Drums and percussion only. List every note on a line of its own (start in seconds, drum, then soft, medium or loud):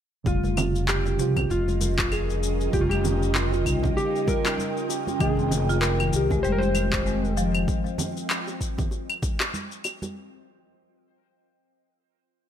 0.26 kick loud
0.26 shaker soft
0.43 high conga medium
0.43 shaker soft
0.57 low conga loud
0.57 claves medium
0.57 shaker medium
0.75 shaker soft
0.88 clap medium
0.88 shaker soft
1.06 high bongo medium
1.06 shaker soft
1.19 shaker medium
1.36 kick medium
1.36 low conga medium
1.36 claves medium
1.36 shaker soft
1.50 shaker soft
1.68 high conga medium
1.68 shaker soft
1.81 high conga medium
1.81 shaker medium
1.98 kick loud
1.98 clap medium
1.98 high bongo medium
2.12 claves medium
2.12 shaker soft
2.30 shaker soft
2.43 shaker medium
2.61 shaker soft
2.73 kick loud
2.73 shaker soft
2.91 high conga medium
2.91 claves medium
2.91 shaker soft
3.05 low conga medium
3.05 shaker medium
3.23 shaker soft
3.35 clap medium
3.35 shaker soft
3.52 high bongo medium
3.52 shaker soft
3.66 kick medium
3.66 claves medium
3.66 shaker medium
3.83 kick loud
3.83 low conga medium
3.83 shaker soft
3.97 high bongo medium
3.97 shaker soft
4.16 shaker soft
4.27 kick loud
4.27 high conga medium
4.27 shaker medium
4.45 clap medium
4.45 high bongo medium
4.45 claves medium
4.45 shaker soft
4.58 high conga medium
4.58 shaker soft
4.77 shaker soft
4.89 high bongo soft
4.89 shaker medium
5.07 high bongo medium
5.07 high conga medium
5.07 shaker soft
5.20 kick loud
5.20 claves medium
5.20 shaker soft
5.37 high conga medium
5.37 shaker soft
5.51 low conga medium
5.51 shaker medium
5.70 shaker soft
5.82 clap medium
5.82 shaker soft
6.00 high bongo soft
6.00 claves medium
6.00 shaker soft
6.13 shaker medium
6.31 kick medium
6.31 low conga medium
6.31 shaker soft
6.44 shaker soft
6.62 high conga medium
6.62 shaker soft
6.75 high conga medium
6.75 claves medium
6.75 shaker medium
6.92 kick loud
6.92 clap medium
6.92 high bongo medium
6.92 shaker soft
7.06 shaker soft
7.25 shaker soft
7.37 shaker medium
7.55 claves medium
7.55 shaker soft
7.68 kick loud
7.68 shaker soft
7.85 high conga medium
7.85 shaker soft
7.98 low conga medium
7.98 shaker medium
8.17 shaker soft
8.30 clap medium
8.30 claves medium
8.30 shaker soft
8.47 high bongo soft
8.47 shaker soft
8.61 kick medium
8.61 shaker medium
8.78 kick loud
8.78 low conga medium
8.78 shaker soft
8.91 high bongo medium
8.91 shaker soft
9.10 claves medium
9.10 shaker soft
9.22 kick loud
9.22 high conga medium
9.22 shaker medium
9.40 clap medium
9.40 high bongo medium
9.40 shaker soft
9.54 high conga medium
9.54 shaker soft
9.72 shaker soft
9.84 high bongo soft
9.84 claves medium
9.84 shaker medium
10.02 high bongo soft
10.02 high conga medium
10.02 shaker soft